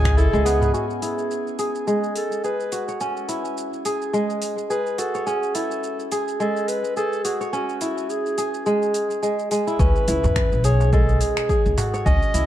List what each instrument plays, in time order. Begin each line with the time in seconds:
Already playing: upright bass C#2, kora G#3 C#4 E4 G#4, clarinet G#5
0.04 finger snap, kick, darbuka tek, shaker
0.17 kora E4, clarinet A4, shaker
0.33 upright bass C#2, kora G#3, shaker
0.45 kora B3, clarinet G#4, open hi-hat, darbuka tek, shaker
0.61 kora B4, darbuka dum, shaker
0.74 kora C#4, clarinet F#4, shaker
0.90 shaker
1.02 kora E4, clarinet G#4, open hi-hat, shaker
1.19 shaker
1.31 shaker
1.47 shaker
1.59 kora G#4, open hi-hat, shaker
1.75 shaker
1.87 kora G#3, clarinet G#4, shaker
2.04 shaker
2.16 clarinet A4, open hi-hat, shaker
2.32 shaker
2.44 kora G#4, clarinet B4, shaker
2.60 shaker
2.72 kora F#4, open hi-hat, shaker
2.88 kora C#5, shaker
3.00 kora C#4, shaker
3.17 shaker
3.29 kora E4, open hi-hat, shaker
3.45 shaker
3.57 shaker
3.73 shaker
3.85 kora G#4, open hi-hat, shaker
4.02 shaker
4.13 kora G#3, shaker
4.30 shaker
4.42 open hi-hat, shaker
4.58 shaker
4.70 kora G#4, clarinet B4, shaker
4.87 shaker
4.98 kora F#4, clarinet A4, open hi-hat, shaker
5.15 kora C#5, shaker
5.27 kora C#4, clarinet G#4, shaker
5.43 shaker
5.55 kora E4, clarinet A4, open hi-hat, shaker
5.71 shaker
5.84 shaker
6.00 shaker
6.12 kora G#4, open hi-hat, shaker
6.28 shaker
6.40 kora G#3, clarinet A4, shaker
6.57 shaker
6.68 clarinet B4, open hi-hat, shaker
6.84 shaker
6.97 kora G#4, clarinet A4, shaker
7.13 shaker
7.25 kora F#4, clarinet G#4, open hi-hat, shaker
7.41 kora C#5, shaker
7.53 kora C#4, clarinet F#4, shaker
7.69 shaker
7.81 kora E4, open hi-hat, shaker
7.98 shaker
8.10 clarinet G#4, shaker
8.26 shaker
8.38 kora G#4, open hi-hat, shaker
8.54 shaker
8.66 kora G#3, clarinet G#4, shaker
8.82 shaker
8.94 open hi-hat, shaker
9.11 shaker
9.23 kora G#3, shaker
9.39 shaker
9.51 kora G#3, open hi-hat, shaker
9.67 kora E4, shaker
9.79 upright bass C#2, kora C#4, clarinet B4, kick, shaker
9.96 shaker
10.08 upright bass C#2, kora E4, open hi-hat, shaker
10.24 upright bass E2, darbuka ka, darbuka tek, darbuka dum, shaker
10.36 finger snap, kick, shaker
10.52 upright bass B1, shaker
10.64 kora G#4, clarinet C#5, open hi-hat, shaker
10.80 darbuka tek, shaker
10.93 kora G#3, clarinet A4, kick, shaker
11.09 shaker
11.21 clarinet G#4, open hi-hat, shaker
11.37 finger snap, shaker
11.49 kora G#4, kick, shaker
11.66 upright bass C#2, shaker
11.78 kora F#4, open hi-hat, darbuka tek, darbuka dum, shaker
11.94 kora C#5, darbuka ka, shaker
12.06 upright bass C#2, kora C#4, clarinet D#5, kick, shaker
12.22 shaker
12.34 upright bass C#2, kora E4, open hi-hat, shaker